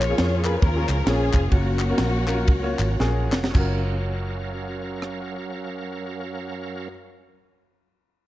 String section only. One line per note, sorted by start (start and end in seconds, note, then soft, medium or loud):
0.00 0.59 F4 medium
0.00 0.59 G#4 medium
0.00 0.41 C#5 loud
0.45 0.62 B4 medium
0.62 1.07 C#4 medium
0.62 1.07 F4 medium
0.62 1.06 A#4 medium
1.08 1.49 C#4 medium
1.08 1.49 F4 medium
1.08 1.52 G#4 medium
1.53 2.96 A#3 medium
1.53 2.96 C#4 medium
1.53 2.96 F#4 medium